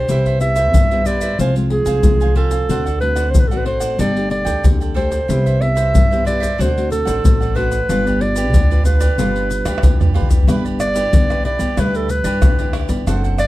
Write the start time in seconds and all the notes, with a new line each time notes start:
Already playing: C5
0.09 C2 C3 B3 E4 G4 B4 C5 E5, pandeiro, shaker, surdo
0.26 B4 C5 E5, pandeiro, shaker, surdo
0.40 B3 E4 G4 E5, muted cavaquinho stroke, pandeiro, shaker
0.56 B4 C5 E5, pandeiro, shaker
0.74 G2, pandeiro, shaker, surdo
0.91 B3 E4 G4 B4 C5 E5, pandeiro, shaker
1.05 B3 E4 G4 B4 C5 D5 E5, pandeiro, shaker
1.21 B4 C5 E5, pandeiro, shaker, surdo
1.39 C2 F3 G#3 C4 F4 C5 F5 G#5, pandeiro, shaker, surdo
1.56 G#3 C4 F4, pandeiro, shaker
1.70 G#4, muted cavaquinho stroke, pandeiro
1.86 C2 C5 F5 G#5, pandeiro, shaker, surdo
2.03 C2 F3 G#3 C4 F4, pandeiro, shaker, surdo
2.21 C5 F5 G#5, pandeiro, shaker
2.35 C4 F4 G4 A4 C5 F5 G#5, pandeiro, surdo
2.51 C5 F5 G#5, pandeiro, shaker, surdo
2.69 D2 D3 A3 C4 D4 F#4 C5 D5 F#5, pandeiro, shaker, surdo
2.86 C5 D5 F#5, pandeiro, shaker, surdo
3.00 A3 C4 F#4 B4, muted cavaquinho stroke, pandeiro
3.15 C5 D5 F#5, pandeiro, shaker
3.30 A1 C5
3.35 A2, pandeiro, shaker, surdo
3.40 B4
3.48 A3 A4 F#5, pandeiro, shaker
3.52 C4 F#4 C5 D5
3.57 B4
3.65 D4 C5 D5 F#5, pandeiro
3.80 C5 D5 F#5, pandeiro, shaker, surdo
3.98 G1 G3 A3 D4 G4 A4 D5 G5, pandeiro, shaker, surdo
4.16 A3 D4 G4, pandeiro, shaker
4.30 D5, muted cavaquinho stroke, pandeiro
4.45 D2 A4 D5 G5, pandeiro, shaker, surdo
4.64 D2 D3 A3 D4 G4, pandeiro, shaker, surdo
4.81 A4 D5 G5, pandeiro, shaker
4.94 A3 D4 G4 A4 C5 D5 G5, pandeiro, surdo
5.11 A4 D5 G5, pandeiro, shaker, surdo
5.28 C2 C3 B3 E4 G4 B4 C5 E5, pandeiro, shaker, surdo
5.46 B4 C5 E5, pandeiro, shaker, surdo
5.61 B3 E4 G4 E5, muted cavaquinho stroke, pandeiro
5.75 B4 C5 E5, pandeiro, shaker
5.94 G2, pandeiro, shaker, surdo
6.11 B3 E4 G4 B4 C5 E5, pandeiro, shaker
6.24 B3 E4 G4 B4 C5 D5 E5, pandeiro, shaker
6.40 B4 C5 E5, pandeiro, shaker, surdo
6.58 D2 D3 A3 C4 D4 F#4 C5 D5 F#5, pandeiro, shaker, surdo
6.77 A3 C4 F#4, pandeiro, shaker
6.90 A4, muted cavaquinho stroke, pandeiro, shaker
7.05 A1 C5 D5 F#5, pandeiro, shaker, surdo
7.24 A1 A2 A3 C4 F#4, pandeiro, shaker, surdo
7.41 C5 D5 F#5, pandeiro, shaker
7.55 A3 C4 D4 F#4 B4 C5 D5 F#5, pandeiro
7.71 C5 D5 F#5, pandeiro, shaker, surdo
7.89 G1 G3 D4 F4 G4 B4 D5, pandeiro, shaker, surdo
8.07 G4 B4 D5, pandeiro, shaker, surdo
8.21 D4 F4 B4 D5, muted cavaquinho stroke, pandeiro
8.36 G4 B4 D5, pandeiro, shaker
8.54 D2 D3, pandeiro, shaker, surdo
8.71 D4 F4 G4 B4 D5, pandeiro, shaker
8.85 D4 F4 G4 B4 D5, pandeiro, shaker
9.00 G4 B4 D5, pandeiro, shaker, surdo
9.18 G1 G3 D4 F4 G4 B4 D5, pandeiro, shaker, surdo
9.36 pandeiro, shaker
9.50 muted cavaquinho stroke, pandeiro, shaker
9.65 D2 G4 B4 D5, pandeiro, tamborim, shaker, surdo
9.78 tamborim
9.83 D2 D3 D4 F4 B4, pandeiro, shaker, surdo
10.00 G4 B4 D5, surdo, pandeiro, shaker
10.11 F4 G4, surdo
10.15 D4 F4 B4 D5, pandeiro
10.21 surdo
10.29 G4 B4 D5, pandeiro, shaker, surdo
10.43 surdo
10.47 G1 G3 D4 E4 G4 B4 D5, pandeiro, tamborim, shaker, surdo
10.65 G4 B4 D5, pandeiro, shaker, surdo
10.79 D5, muted cavaquinho stroke, pandeiro, tamborim, shaker
10.94 D4 E4 G4 B4 D5, pandeiro, shaker
11.13 G1 D3, pandeiro, shaker, surdo
11.29 D4 E4 G4 B4 D5, pandeiro, tamborim, shaker
11.44 E4 G4 B4 D5, pandeiro
11.59 G1 G4 B4 D5, pandeiro, shaker, surdo
11.77 D2 G3 D4 E4 G4 B4 D5, pandeiro, tamborim, shaker, surdo
11.95 A4, pandeiro, shaker
12.09 B4, muted cavaquinho stroke, pandeiro, shaker
12.24 G2 D4 E4 G4 B4 D5, pandeiro, shaker, surdo
12.42 D2 D3, pandeiro, tamborim, shaker, surdo
12.59 D4 E4 G4 B4 D5, pandeiro, shaker
12.73 E4 G4 B4 D5, pandeiro, tamborim
12.89 G1 G4 B4 D5, pandeiro, shaker, surdo
13.07 F#1 F#3 C4 D4 A4 C5 F#5, pandeiro, tamborim, shaker, surdo
13.24 A4 C5 F#5, pandeiro, shaker, surdo
13.38 D5, muted cavaquinho stroke, pandeiro, tamborim, shaker